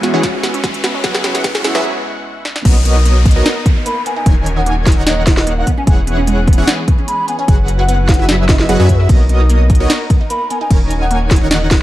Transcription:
Already playing: E1 E3 B3 C#4 E4 F#4 G#4 B4 C#5 E5 F#5 G#5 C#6, riser
0.00 G#3 B3 C#4, snare, closed hi-hat
0.05 F#4
0.14 E1 E3 C#4 E4 G#4 C#5 F#5
0.23 G#3, kick, snare, closed hi-hat
0.43 B3, snare, closed hi-hat
0.54 C#4, closed hi-hat
0.64 G#3, kick, snare, closed hi-hat
0.74 closed hi-hat
0.84 B3, snare, closed hi-hat
0.94 C#4
1.02 F#1 F#3 G#3 B3 C#4 F#4 G#4 B4 F#5 C#6, kick, snare, closed hi-hat
1.06 E4
1.15 snare
1.24 C#4, snare, closed hi-hat
1.35 E4, snare, closed hi-hat
1.44 B3, kick, snare, closed hi-hat
1.55 snare
1.62 G#3 B3 C#4 E4, snare, closed hi-hat
1.75 F#1 F#3 E4 F#4 G#4 B4 E5, snare
2.45 snare
2.56 snare
2.65 B1 A#3 B3 D#4 F#4 A#4 C#5 D#5, kick, closed hi-hat, crash, downlifter
2.85 B3, closed hi-hat
2.96 D#4
3.05 A#3, closed hi-hat
3.25 B3, kick, closed hi-hat
3.31 closed hi-hat
3.36 B1 B3 D#4 F#4 A#4 C#5 D#5
3.46 A#3, snare, closed hi-hat
3.66 B3, kick, closed hi-hat
3.76 D#4
3.86 A#3 B5, closed hi-hat
4.06 B3 G#5, closed hi-hat
4.16 D#4 G#5
4.26 D#1 D#3 A#3 C#4 D#4 F#4 A#4 C#5 G#5, kick, closed hi-hat
4.46 C#4, closed hi-hat
4.56 D#4 F#5
4.66 A#3, closed hi-hat
4.86 C#4, kick, snare, closed hi-hat
4.92 closed hi-hat
4.97 D#1 D#3 D#4 A#4 C#5 F#5
5.06 A#3 D#5, snare, closed hi-hat
5.26 C#4, kick, snare, closed hi-hat
5.37 D#4 D#5, snare
5.47 A#3, closed hi-hat
5.58 F#5
5.67 E3 B3 G#4, kick, closed hi-hat
5.77 C#4 G#5
5.87 E1 E3 G#3 E4 G#4 C#5 F#5 G#5, kick, closed hi-hat
6.07 B3, closed hi-hat
6.18 C#4
6.27 G#3, closed hi-hat
6.47 B3, kick, closed hi-hat
6.53 closed hi-hat
6.58 E1 E3 C#4 E4 G#4 C#5 F#5
6.67 G#3, snare, closed hi-hat
6.88 B3, kick, closed hi-hat
6.98 C#4
7.08 G#3 B5, closed hi-hat
7.28 B3 G#5, closed hi-hat
7.39 C#4 G#5
7.48 F#1 F#3 E4 F#4 G#4 B4 F#5, kick, closed hi-hat
7.68 C#4, closed hi-hat
7.79 E4 F#5
7.88 B3, closed hi-hat
8.09 C#4 F#5, kick, snare, closed hi-hat
8.14 closed hi-hat
8.19 F#1 F#3 E4 F#4 G#4 B4 E5
8.29 B3, snare, closed hi-hat
8.49 C#4 D#5, kick, snare, closed hi-hat
8.59 E4 D#5, snare
8.69 F#1 F#3 B3 F#4 G#4 B4 F#5, closed hi-hat
8.80 F#2 F#3 F#4 G#4 B4 E5
8.89 C#4, kick, closed hi-hat
9.00 E4
9.09 B1 A#3 B3 D#4 F#4 A#4 C#5 D#5, kick, closed hi-hat, crash
9.29 B3, closed hi-hat
9.40 D#4
9.50 A#3, closed hi-hat
9.70 B3, kick, closed hi-hat
9.75 closed hi-hat
9.80 B1 B3 D#4 F#4 A#4 C#5 D#5
9.90 A#3, snare, closed hi-hat, crash
10.10 B3, kick, closed hi-hat
10.21 D#4
10.30 A#3 B5, closed hi-hat
10.50 B3 G#5, closed hi-hat
10.61 D#4 G#5
10.71 D#1 D#3 A#3 C#4 D#4 F#4 A#4 C#5 G#5, kick, closed hi-hat, crash
10.91 C#4, closed hi-hat
11.01 D#4 F#5
11.11 A#3, closed hi-hat
11.31 C#4, kick, snare, closed hi-hat
11.36 closed hi-hat
11.41 D#1 D#3 D#4 A#4 C#5 F#5
11.51 A#3 D#5, snare, closed hi-hat, crash
11.71 C#4, kick, snare, closed hi-hat

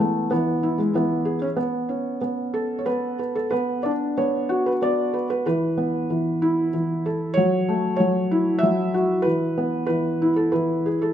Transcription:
Already playing: E3
0.00 A3 B3
0.31 E3 B3
0.63 E4
0.78 G#3
0.94 E3 B3
1.25 G#4
1.42 C#4
1.57 B3
1.89 C#4
2.21 B3
2.54 A4
2.79 C#5
2.86 B3 B4
3.19 B4
3.35 A4
3.51 B3 B4
3.83 D4 D5
4.18 B3 C#5
4.49 F#4
4.66 B4
4.82 B3 D5
5.14 B4
5.30 B4
5.46 E3 B4
5.78 B3
6.10 E3
6.42 E4
6.74 E3
7.06 A4
7.34 F#3 C#5
7.68 A3
7.96 F#3 C#5
8.31 E4
8.59 E5
8.63 F#3
8.94 F#4
9.22 E3 B4
9.58 B3
9.87 E3 B4
10.22 E4
10.36 A4
10.52 E3 B4
10.86 G#4
11.02 A4

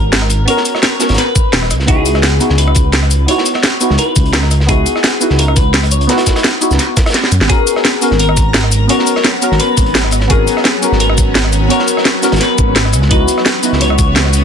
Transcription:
Already playing: G#1 B3 C#4 F#4 A#4
0.12 snare, closed hi-hat
0.22 cross-stick, snare
0.30 closed hi-hat, shaker
0.45 B3 C#4 F#4 C#5, closed hi-hat
0.50 A#4
0.57 snare
0.65 closed hi-hat, shaker
0.75 cross-stick, snare
0.82 C#5, snare, closed hi-hat
0.99 B3 C#4 F#4 A#4, snare, closed hi-hat, shaker
1.09 G#1, snare, closed hi-hat
1.14 snare, closed hi-hat
1.18 B4, snare, closed hi-hat
1.36 kick, closed hi-hat, shaker
1.52 D#1, snare, closed hi-hat
1.62 cross-stick, snare
1.70 C#2, cross-stick, closed hi-hat, shaker
1.80 snare
1.86 B3 D#4 E4 G#4, kick, closed hi-hat
1.90 F#4
2.06 closed hi-hat, shaker
2.14 cross-stick, snare
2.23 snare, closed hi-hat
2.40 B3 D#4 E4 F#4, closed hi-hat, shaker
2.50 C#2, snare
2.58 C#2 B4, closed hi-hat
2.68 cross-stick
2.75 kick, closed hi-hat, shaker
2.92 snare, closed hi-hat
3.02 cross-stick, snare
3.11 closed hi-hat, shaker
3.26 B3 D#4 E4 C#5, closed hi-hat
3.31 F#4
3.38 snare
3.46 closed hi-hat, shaker
3.54 cross-stick, snare
3.63 snare, closed hi-hat
3.80 B3 D#4 E4 F#4, closed hi-hat, shaker
3.90 C#2, snare
3.98 B4, closed hi-hat
4.16 C#2, kick, closed hi-hat, shaker
4.25 closed hi-hat
4.33 A#4, snare, closed hi-hat
4.43 cross-stick, snare
4.51 cross-stick, closed hi-hat, shaker
4.60 snare
4.66 B3 D#4 E4 G#4, kick, closed hi-hat
4.71 F#4
4.86 closed hi-hat, shaker
4.96 cross-stick, snare
5.04 snare, closed hi-hat
5.20 B3 D#4 E4 F#4, closed hi-hat, shaker
5.30 C#2, snare
5.39 C#2 A#4, closed hi-hat
5.48 cross-stick
5.56 B4, kick, closed hi-hat, shaker
5.74 snare, closed hi-hat
5.83 cross-stick, closed hi-hat
5.91 C#5, closed hi-hat, shaker
6.01 closed hi-hat
6.07 B3 D#4 E4 B4, snare, closed hi-hat
6.11 F#4
6.17 snare, closed hi-hat
6.26 kick, snare, closed hi-hat, shaker
6.36 cross-stick, snare, closed hi-hat
6.44 snare, closed hi-hat
6.60 B3 D#4 E4 F#4, closed hi-hat, shaker
6.71 C#2, snare, shaker
6.79 snare, closed hi-hat
6.97 kick, snare, closed hi-hat, shaker
7.06 cross-stick, snare, closed hi-hat
7.10 snare, closed hi-hat
7.14 snare, closed hi-hat
7.24 snare
7.32 F#2, closed hi-hat, shaker
7.41 G#1, snare
7.47 F#3 B3 C#4 F#4 G#4 A#5, kick, closed hi-hat
7.52 A#4
7.67 closed hi-hat, shaker
7.76 cross-stick, snare
7.84 snare, closed hi-hat
8.01 B3 C#4 F#4 A#4, closed hi-hat, shaker
8.11 G#1, snare
8.19 G#1 A#4, closed hi-hat
8.29 cross-stick
8.37 kick, closed hi-hat, shaker
8.54 snare, closed hi-hat
8.64 cross-stick, snare
8.72 closed hi-hat, shaker
8.87 B3 C#4 F#4 C#5, closed hi-hat
8.92 A#4
8.99 snare
9.07 closed hi-hat, shaker
9.16 cross-stick, snare
9.24 snare, closed hi-hat
9.41 B3 C#4 F#4 A#4, closed hi-hat, shaker
9.52 G#1, snare
9.60 B4, closed hi-hat
9.77 G#1, kick, closed hi-hat, shaker
9.86 closed hi-hat
9.95 snare, closed hi-hat
10.04 cross-stick, snare
10.11 cross-stick, closed hi-hat, shaker
10.20 snare
10.28 B3 C#4 F#4 G#4, kick, closed hi-hat
10.32 A#4
10.48 closed hi-hat, shaker
10.57 cross-stick, snare
10.64 snare, closed hi-hat
10.81 B3 C#4 F#4 A#4, closed hi-hat, shaker
10.92 G#1, snare
11.00 G#1 A#4, closed hi-hat
11.10 cross-stick
11.18 kick, closed hi-hat, shaker
11.35 snare, closed hi-hat
11.44 cross-stick, snare
11.52 closed hi-hat, shaker
11.68 B3 C#4 F#4 C#5, closed hi-hat
11.72 A#4
11.79 snare
11.88 closed hi-hat, shaker
11.97 cross-stick, snare
12.05 snare, closed hi-hat
12.22 B3 C#4 F#4 A#4, snare, closed hi-hat, shaker
12.32 G#1, snare, closed hi-hat
12.36 snare, closed hi-hat
12.41 B4, snare, closed hi-hat
12.58 G#1, kick, closed hi-hat, shaker
12.75 snare, closed hi-hat
12.85 cross-stick, snare
12.92 C#2 E3 B3 F#4 D#6, cross-stick, closed hi-hat, shaker
13.02 snare
13.09 B3 D#4 E4 B4, kick, closed hi-hat
13.13 F#4
13.28 closed hi-hat, shaker
13.37 cross-stick, snare
13.46 snare, closed hi-hat
13.62 B3 D#4 E4 F#4, closed hi-hat, shaker
13.73 C#2, snare
13.81 C#2 C#5, closed hi-hat
13.90 cross-stick
13.98 kick, closed hi-hat, shaker
14.16 snare, closed hi-hat
14.25 cross-stick, snare
14.33 closed hi-hat, shaker

